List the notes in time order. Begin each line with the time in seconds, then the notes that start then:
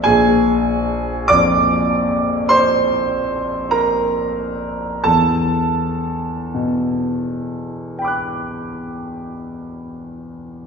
0.04 A#1 G#4 G#5
1.28 F2 D5 D6
2.49 C5 C6
3.71 A#4 A#5
5.04 E2 A4 A5
6.54 B2
7.99 G5 B5
8.05 D6 F#6